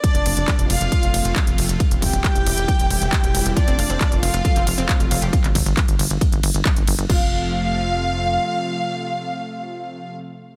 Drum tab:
CC |----------------|----------------|----------------|----------------|
RD |x-x-x-x-x-x-x-x-|x-x-x-x-x-x-x-x-|x-x-x-x-x-x-x-x-|x-x-x-x-x-x-x-x-|
HH |xxoxxxoxxxoxxxox|xxoxxxoxxxoxxxox|xxoxxxoxxxoxxxox|xxoxxxoxxxoxxxox|
CP |----x-------x---|----x-------x---|----x-------x---|-x--x-------x---|
BD |o---o---o---o---|o-o-o---o---o---|o---o---o---o---|o-o-o---o---o---|

CC |x---------------|----------------|
RD |----------------|----------------|
HH |----------------|----------------|
CP |----------------|----------------|
BD |o---------------|----------------|